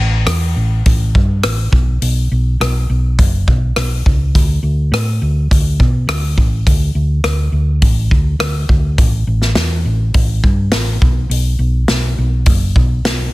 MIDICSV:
0, 0, Header, 1, 3, 480
1, 0, Start_track
1, 0, Key_signature, 2, "major"
1, 0, Tempo, 580833
1, 1663, Time_signature, 4, 2, 24, 8
1, 11019, End_track
2, 0, Start_track
2, 0, Title_t, "Fingered electric bass"
2, 0, Program_c, 0, 33
2, 0, Note_on_c, 0, 33, 75
2, 208, Note_off_c, 0, 33, 0
2, 215, Note_on_c, 0, 40, 74
2, 442, Note_off_c, 0, 40, 0
2, 465, Note_on_c, 0, 33, 74
2, 687, Note_off_c, 0, 33, 0
2, 711, Note_on_c, 0, 33, 88
2, 930, Note_off_c, 0, 33, 0
2, 952, Note_on_c, 0, 43, 69
2, 1171, Note_off_c, 0, 43, 0
2, 1190, Note_on_c, 0, 33, 65
2, 1410, Note_off_c, 0, 33, 0
2, 1420, Note_on_c, 0, 35, 76
2, 1644, Note_off_c, 0, 35, 0
2, 1667, Note_on_c, 0, 35, 76
2, 1888, Note_off_c, 0, 35, 0
2, 1913, Note_on_c, 0, 35, 72
2, 2131, Note_off_c, 0, 35, 0
2, 2151, Note_on_c, 0, 35, 73
2, 2370, Note_off_c, 0, 35, 0
2, 2393, Note_on_c, 0, 35, 74
2, 2611, Note_off_c, 0, 35, 0
2, 2633, Note_on_c, 0, 30, 82
2, 2851, Note_off_c, 0, 30, 0
2, 2871, Note_on_c, 0, 35, 70
2, 3089, Note_off_c, 0, 35, 0
2, 3108, Note_on_c, 0, 35, 67
2, 3328, Note_off_c, 0, 35, 0
2, 3358, Note_on_c, 0, 37, 74
2, 3574, Note_off_c, 0, 37, 0
2, 3595, Note_on_c, 0, 38, 75
2, 3812, Note_off_c, 0, 38, 0
2, 3824, Note_on_c, 0, 38, 71
2, 4046, Note_off_c, 0, 38, 0
2, 4063, Note_on_c, 0, 45, 82
2, 4285, Note_off_c, 0, 45, 0
2, 4310, Note_on_c, 0, 38, 74
2, 4529, Note_off_c, 0, 38, 0
2, 4553, Note_on_c, 0, 38, 90
2, 4770, Note_off_c, 0, 38, 0
2, 4788, Note_on_c, 0, 47, 69
2, 5008, Note_off_c, 0, 47, 0
2, 5020, Note_on_c, 0, 38, 75
2, 5243, Note_off_c, 0, 38, 0
2, 5266, Note_on_c, 0, 33, 72
2, 5487, Note_off_c, 0, 33, 0
2, 5508, Note_on_c, 0, 38, 78
2, 5728, Note_off_c, 0, 38, 0
2, 5744, Note_on_c, 0, 38, 69
2, 5966, Note_off_c, 0, 38, 0
2, 5981, Note_on_c, 0, 38, 70
2, 6204, Note_off_c, 0, 38, 0
2, 6217, Note_on_c, 0, 38, 73
2, 6442, Note_off_c, 0, 38, 0
2, 6460, Note_on_c, 0, 33, 86
2, 6684, Note_off_c, 0, 33, 0
2, 6705, Note_on_c, 0, 38, 67
2, 6926, Note_off_c, 0, 38, 0
2, 6935, Note_on_c, 0, 38, 66
2, 7161, Note_off_c, 0, 38, 0
2, 7180, Note_on_c, 0, 38, 72
2, 7404, Note_off_c, 0, 38, 0
2, 7420, Note_on_c, 0, 33, 76
2, 7644, Note_off_c, 0, 33, 0
2, 7662, Note_on_c, 0, 33, 72
2, 7885, Note_off_c, 0, 33, 0
2, 7903, Note_on_c, 0, 40, 78
2, 8125, Note_off_c, 0, 40, 0
2, 8144, Note_on_c, 0, 33, 72
2, 8366, Note_off_c, 0, 33, 0
2, 8381, Note_on_c, 0, 33, 88
2, 8604, Note_off_c, 0, 33, 0
2, 8624, Note_on_c, 0, 43, 71
2, 8846, Note_off_c, 0, 43, 0
2, 8869, Note_on_c, 0, 33, 71
2, 9089, Note_off_c, 0, 33, 0
2, 9107, Note_on_c, 0, 35, 72
2, 9328, Note_off_c, 0, 35, 0
2, 9335, Note_on_c, 0, 35, 75
2, 9561, Note_off_c, 0, 35, 0
2, 9577, Note_on_c, 0, 35, 77
2, 9803, Note_off_c, 0, 35, 0
2, 9824, Note_on_c, 0, 35, 73
2, 10047, Note_off_c, 0, 35, 0
2, 10068, Note_on_c, 0, 35, 67
2, 10289, Note_off_c, 0, 35, 0
2, 10298, Note_on_c, 0, 30, 84
2, 10523, Note_off_c, 0, 30, 0
2, 10545, Note_on_c, 0, 35, 77
2, 10768, Note_off_c, 0, 35, 0
2, 10781, Note_on_c, 0, 35, 70
2, 11005, Note_off_c, 0, 35, 0
2, 11019, End_track
3, 0, Start_track
3, 0, Title_t, "Drums"
3, 220, Note_on_c, 9, 37, 91
3, 220, Note_on_c, 9, 46, 45
3, 303, Note_off_c, 9, 37, 0
3, 303, Note_off_c, 9, 46, 0
3, 707, Note_on_c, 9, 46, 39
3, 711, Note_on_c, 9, 36, 90
3, 790, Note_off_c, 9, 46, 0
3, 794, Note_off_c, 9, 36, 0
3, 950, Note_on_c, 9, 36, 75
3, 1033, Note_off_c, 9, 36, 0
3, 1186, Note_on_c, 9, 37, 93
3, 1186, Note_on_c, 9, 46, 49
3, 1269, Note_off_c, 9, 37, 0
3, 1269, Note_off_c, 9, 46, 0
3, 1426, Note_on_c, 9, 36, 84
3, 1509, Note_off_c, 9, 36, 0
3, 1668, Note_on_c, 9, 46, 45
3, 1750, Note_off_c, 9, 46, 0
3, 2159, Note_on_c, 9, 37, 92
3, 2159, Note_on_c, 9, 46, 39
3, 2242, Note_off_c, 9, 37, 0
3, 2242, Note_off_c, 9, 46, 0
3, 2634, Note_on_c, 9, 36, 90
3, 2638, Note_on_c, 9, 46, 37
3, 2717, Note_off_c, 9, 36, 0
3, 2721, Note_off_c, 9, 46, 0
3, 2874, Note_on_c, 9, 36, 77
3, 2956, Note_off_c, 9, 36, 0
3, 3110, Note_on_c, 9, 37, 97
3, 3110, Note_on_c, 9, 46, 44
3, 3193, Note_off_c, 9, 37, 0
3, 3193, Note_off_c, 9, 46, 0
3, 3356, Note_on_c, 9, 36, 69
3, 3438, Note_off_c, 9, 36, 0
3, 3596, Note_on_c, 9, 36, 89
3, 3598, Note_on_c, 9, 46, 44
3, 3678, Note_off_c, 9, 36, 0
3, 3680, Note_off_c, 9, 46, 0
3, 4080, Note_on_c, 9, 37, 91
3, 4080, Note_on_c, 9, 46, 45
3, 4163, Note_off_c, 9, 37, 0
3, 4163, Note_off_c, 9, 46, 0
3, 4556, Note_on_c, 9, 36, 88
3, 4564, Note_on_c, 9, 46, 44
3, 4638, Note_off_c, 9, 36, 0
3, 4647, Note_off_c, 9, 46, 0
3, 4792, Note_on_c, 9, 36, 74
3, 4875, Note_off_c, 9, 36, 0
3, 5031, Note_on_c, 9, 37, 98
3, 5031, Note_on_c, 9, 46, 50
3, 5114, Note_off_c, 9, 37, 0
3, 5114, Note_off_c, 9, 46, 0
3, 5270, Note_on_c, 9, 36, 71
3, 5352, Note_off_c, 9, 36, 0
3, 5510, Note_on_c, 9, 36, 91
3, 5511, Note_on_c, 9, 46, 45
3, 5592, Note_off_c, 9, 36, 0
3, 5594, Note_off_c, 9, 46, 0
3, 5984, Note_on_c, 9, 37, 86
3, 5984, Note_on_c, 9, 46, 43
3, 6066, Note_off_c, 9, 37, 0
3, 6066, Note_off_c, 9, 46, 0
3, 6460, Note_on_c, 9, 46, 39
3, 6464, Note_on_c, 9, 36, 84
3, 6543, Note_off_c, 9, 46, 0
3, 6546, Note_off_c, 9, 36, 0
3, 6704, Note_on_c, 9, 36, 76
3, 6787, Note_off_c, 9, 36, 0
3, 6943, Note_on_c, 9, 37, 103
3, 6943, Note_on_c, 9, 46, 44
3, 7025, Note_off_c, 9, 37, 0
3, 7025, Note_off_c, 9, 46, 0
3, 7183, Note_on_c, 9, 36, 75
3, 7265, Note_off_c, 9, 36, 0
3, 7423, Note_on_c, 9, 36, 92
3, 7424, Note_on_c, 9, 46, 41
3, 7506, Note_off_c, 9, 36, 0
3, 7506, Note_off_c, 9, 46, 0
3, 7782, Note_on_c, 9, 38, 26
3, 7864, Note_off_c, 9, 38, 0
3, 7896, Note_on_c, 9, 38, 88
3, 7896, Note_on_c, 9, 46, 39
3, 7978, Note_off_c, 9, 38, 0
3, 7978, Note_off_c, 9, 46, 0
3, 8380, Note_on_c, 9, 46, 42
3, 8384, Note_on_c, 9, 36, 89
3, 8462, Note_off_c, 9, 46, 0
3, 8467, Note_off_c, 9, 36, 0
3, 8625, Note_on_c, 9, 36, 78
3, 8708, Note_off_c, 9, 36, 0
3, 8856, Note_on_c, 9, 38, 94
3, 8856, Note_on_c, 9, 46, 49
3, 8939, Note_off_c, 9, 38, 0
3, 8939, Note_off_c, 9, 46, 0
3, 9105, Note_on_c, 9, 36, 93
3, 9188, Note_off_c, 9, 36, 0
3, 9347, Note_on_c, 9, 46, 43
3, 9430, Note_off_c, 9, 46, 0
3, 9819, Note_on_c, 9, 38, 94
3, 9819, Note_on_c, 9, 46, 45
3, 9902, Note_off_c, 9, 38, 0
3, 9902, Note_off_c, 9, 46, 0
3, 10295, Note_on_c, 9, 46, 43
3, 10301, Note_on_c, 9, 36, 92
3, 10377, Note_off_c, 9, 46, 0
3, 10383, Note_off_c, 9, 36, 0
3, 10543, Note_on_c, 9, 36, 75
3, 10625, Note_off_c, 9, 36, 0
3, 10786, Note_on_c, 9, 38, 101
3, 10786, Note_on_c, 9, 46, 44
3, 10869, Note_off_c, 9, 38, 0
3, 10869, Note_off_c, 9, 46, 0
3, 11019, End_track
0, 0, End_of_file